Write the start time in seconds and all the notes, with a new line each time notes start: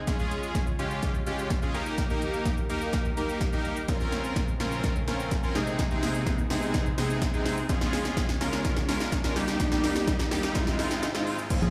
Already playing: G#3, riser
0.07 C#3 G#3 C#4 F4 G#4 C#5, kick, snare, closed hi-hat, shaker
0.19 G#3 C#4 F4 G#4, shaker
0.31 closed hi-hat, shaker
0.43 shaker
0.55 kick, snare, closed hi-hat, shaker
0.67 shaker
0.79 G#3 C#4 F4 G4, closed hi-hat, shaker
0.91 shaker
1.03 kick, snare, closed hi-hat, shaker
1.15 shaker
1.26 G#3 C#4 F4 G4, closed hi-hat, shaker
1.39 shaker
1.50 kick, snare, closed hi-hat, shaker
1.62 G#3 C#4 F4 G#4, shaker
1.74 D#2 D#3 A#3 D#4 G4 A#4, closed hi-hat, shaker
1.86 shaker
1.98 kick, snare, closed hi-hat, shaker
2.10 A#3 D#4 G4 A#4, shaker
2.22 closed hi-hat, shaker
2.34 shaker
2.45 kick, snare, closed hi-hat, shaker
2.58 shaker
2.69 A#3 D#4 G4 A#4, closed hi-hat, shaker
2.81 shaker
2.93 kick, snare, closed hi-hat, shaker
3.05 shaker
3.17 A#3 D#4 G4 A#4, closed hi-hat, shaker
3.29 shaker
3.41 kick, snare, closed hi-hat, shaker
3.53 A#3 D#4 G4 A#4, shaker
3.65 closed hi-hat, shaker
3.77 shaker
3.88 A#2 C#3 F3 C4 C#4 F4 A#4 C5, kick, snare, closed hi-hat, shaker
4.00 C4 C#4 F4 A#4, shaker
4.12 snare, closed hi-hat, shaker
4.24 shaker
4.36 kick, snare, closed hi-hat, shaker
4.48 shaker
4.60 C4 C#4 F4 A#4, snare, closed hi-hat, shaker
4.72 shaker
4.84 kick, snare, closed hi-hat, shaker
4.96 shaker
5.07 C4 C#4 F4 A#4, snare, closed hi-hat, shaker
5.20 shaker
5.31 kick, snare, closed hi-hat, shaker
5.43 C4 C#4 F4 A#4, shaker
5.55 C2 C3 G#3 C4 D#4 G#4, snare, closed hi-hat, shaker
5.67 shaker
5.79 kick, snare, closed hi-hat, shaker
5.91 C3 G#3 C4 D#4 G#4, shaker
6.03 snare, open hi-hat, shaker
6.15 shaker
6.26 kick, snare, closed hi-hat, shaker
6.38 shaker
6.50 C3 G#3 C4 D#4 G#4, snare, open hi-hat, shaker
6.62 shaker
6.74 kick, snare, closed hi-hat, shaker
6.86 shaker
6.98 C3 G#3 C4 D#4 G#4, snare, open hi-hat, shaker
7.10 shaker
7.22 kick, snare, closed hi-hat, shaker
7.33 C3 G#3 C4 D#4 G#4, shaker
7.46 snare, open hi-hat, shaker
7.57 shaker
7.69 C#2 C#3 G#3 C#4 F4 G#4, kick, snare, closed hi-hat, shaker
7.81 G#3 C#4 F4 G#4, snare, shaker
7.93 snare, open hi-hat, shaker
8.05 snare, shaker
8.17 kick, snare, closed hi-hat, shaker
8.29 snare, shaker
8.40 G#3 C#4 F4 A#4, snare, open hi-hat, shaker
8.53 snare, shaker
8.65 kick, snare, closed hi-hat, shaker
8.77 snare, shaker
8.88 G#3 C#4 F4 A#4, snare, open hi-hat, shaker
9.00 snare, shaker
9.12 kick, snare, closed hi-hat, shaker
9.24 G#3 C#4 F4 A#4, snare, shaker
9.36 D#2 D#3 G3 A#3 D#4 G4 A#4, snare, open hi-hat, shaker
9.48 snare, shaker
9.60 kick, snare, closed hi-hat, shaker
9.72 G3 A#3 D#4 G4, snare, shaker
9.84 snare, open hi-hat, shaker
9.96 snare, shaker
10.07 kick, snare, closed hi-hat, shaker
10.19 snare, shaker
10.31 G3 A#3 D#4 G4, snare, open hi-hat, shaker
10.43 snare, shaker
10.55 G#2 G#3 C4 D#4 F4 C5, kick, snare, closed hi-hat, shaker
10.67 snare, shaker
10.79 G#3 C4 D#4 F4, snare, open hi-hat, shaker
10.91 snare, shaker
11.03 snare, closed hi-hat, shaker
11.15 G#3 C4 D#4 F4, snare, shaker
11.27 open hi-hat, shaker
11.39 shaker
11.50 C#3 F3 A#3 C4 C#4 F4 C5, kick, closed hi-hat, crash, downlifter, shaker
11.62 A#1 G#4, shaker